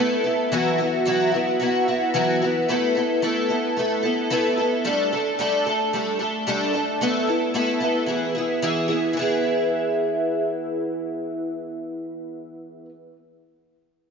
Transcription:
Already playing: A3 B3
0.00 E4 A4
0.24 B3 E4 A4
0.52 E3 F#3 B3 E4 F#4
0.78 B3 E4 F#4
1.05 E3 F#3 B3 E4 F#4
1.32 B3 E4 F#4
1.60 F#3 B3 E4 F#4
1.88 B3 E4 F#4
2.14 E3 F#3 B3 E4 F#4
2.42 B3 E4 F#4
2.69 A3 B3 E4 A4
2.95 B3 E4 A4
3.22 A3 B3 E4 A4
3.49 B3 E4 A4
3.77 A3 B3 E4 A4
4.03 B3 E4 A4
4.30 A3 B3 E4 A4
4.58 B3 E4 A4
4.85 G3 A3 D4 A4
5.13 A3 D4 A4
5.39 G3 A3 D4 A4
5.66 A3 D4 A4
5.93 G3 A3 D4 A4
6.19 A3 D4 A4
6.47 G3 A3 D4 A4
6.73 A3 D4 A4
7.01 A3 B3 E4 A4
7.27 B3 E4 A4
7.54 A3 B3 E4 A4
7.80 B3 E4 A4
8.06 E3 B3 E4 G#4
8.35 B3 E4 G#4
8.62 E3 B3 E4 G#4
8.88 B3 E4 G#4
9.13 E3 B3
9.19 E4 G#4

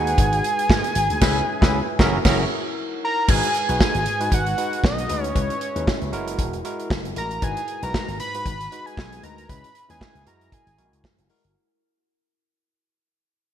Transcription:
Already playing: D#2 G#3 D#4 F#4 G#4 B4 F#5 G#5
0.07 closed hi-hat
0.18 G#1, kick, closed hi-hat
0.33 closed hi-hat
0.44 closed hi-hat
0.59 closed hi-hat
0.70 G#2, kick, snare
0.84 closed hi-hat
0.95 G#1, closed hi-hat
1.10 D2, closed hi-hat
1.21 C#2 C#4 E4 G#4 B4 E5, kick, snare, crash
1.61 C#2 C#4 E4 G#4 B4 E5, kick, snare
1.98 F#1 E3 C#4 E4 F#4 G#4 A#4 E5, kick, snare
2.25 F#1 E3 C#4 F#4 G#4 A#4 E5, kick, snare, crash
2.75 D#4 C#5 F#5
3.04 A#5
3.28 G#1 G#3 D#4 F#4 B4 G#5, kick, crash
3.43 closed hi-hat
3.54 closed hi-hat
3.68 B1 G#3 D#4 F#4 B4, closed hi-hat
3.80 G#5, kick, snare
3.95 G#1, closed hi-hat
4.06 G#2, closed hi-hat
4.20 G#3 D#4 F#4 B4, closed hi-hat
4.32 G#1 F#5, kick, closed hi-hat
4.46 closed hi-hat
4.57 G#3 D#4 F#4 B4, closed hi-hat
4.73 closed hi-hat
4.83 B1 D#5, kick, snare
4.98 closed hi-hat
5.09 D2 G#3 D#4 F#4 B4, closed hi-hat
5.23 C#5, closed hi-hat
5.35 C#2 G#3 C#4 E4 G#4 B4 C#5 E5, kick, closed hi-hat
5.50 closed hi-hat
5.61 closed hi-hat
5.75 D#2 G#3 C#4 E4 B4, closed hi-hat
5.87 kick, snare
6.02 C#2, closed hi-hat
6.12 F#1 G#3 E4 F#4 A#4, closed hi-hat
6.28 closed hi-hat
6.39 E1, kick, closed hi-hat
6.53 closed hi-hat
6.64 G#3 E4 F#4 A#4, closed hi-hat
6.80 closed hi-hat
6.90 F#1, kick, snare
7.05 closed hi-hat
7.16 A1 G#3 E4 F#4 A#4 A#5, closed hi-hat
7.31 closed hi-hat
7.42 G#1 G#3 D#4 F#4 B4 G#5, kick, closed hi-hat
7.57 closed hi-hat
7.68 closed hi-hat
7.82 B1 G#3 D#4 F#4 B4 A#5, closed hi-hat
7.94 kick, snare
8.08 G#1, closed hi-hat
8.20 G#2 B5, closed hi-hat
8.34 G#3 D#4 F#4 B4, closed hi-hat
8.46 G#1, kick, closed hi-hat
8.61 closed hi-hat
8.72 G#3 D#4 F#4 B4, closed hi-hat
8.86 G#5, closed hi-hat
8.97 B1, kick, snare
9.13 closed hi-hat
9.23 D2 G#3 D#4 F#4 B4 A#5, closed hi-hat
9.38 closed hi-hat
9.49 C#2 G#3 C#4 E4 G#4 B4 E5 B5, kick, closed hi-hat
9.64 closed hi-hat
9.75 closed hi-hat
9.89 D#2 G#3 C#4 E4 B4 G#5, closed hi-hat
10.01 kick, snare
10.15 C#2, closed hi-hat
10.26 F#2 G#3 E4 F#4 A#4 A#5, closed hi-hat
10.41 closed hi-hat
10.52 G#5, kick, closed hi-hat
10.67 G#1, closed hi-hat
10.78 A#1 G#3 E4 F#4 A#4, closed hi-hat
10.93 C#2, closed hi-hat
11.04 F#2, kick, snare
11.19 F#1, closed hi-hat
11.30 G#3 E4 F#4 A#4, open hi-hat
11.45 G1, closed hi-hat

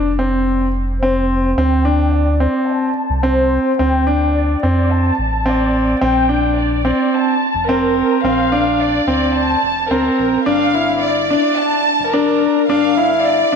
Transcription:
Already playing: F1 D4
0.19 C4
1.01 C4 C5
1.57 D2 C4 G5
1.85 D4
2.13 D5
2.40 C4
2.69 A5
3.10 C2
3.23 C4 C5
3.79 D2 C4 G5
4.07 D4
4.36 D5
4.63 F2 C4
4.92 A5
5.18 A1
5.46 C4 D5
6.01 A#1 C4 G5
6.29 D4
6.58 D5
6.85 C4
7.14 A5
7.54 F1
7.69 C4 A#4
8.23 A#1 C4 F5
8.52 D4
8.79 D5
9.07 D2 C4
9.35 A5
9.63 F1
9.90 D2 C4 A#4
10.19 A#1
10.46 G1 D4 F5
10.74 E4
11.03 D5
11.30 D4
11.57 A5
11.99 F1
12.12 D4 A#4
12.68 G1 D4 F5
12.97 E4
13.24 D5
13.52 A#1 D4

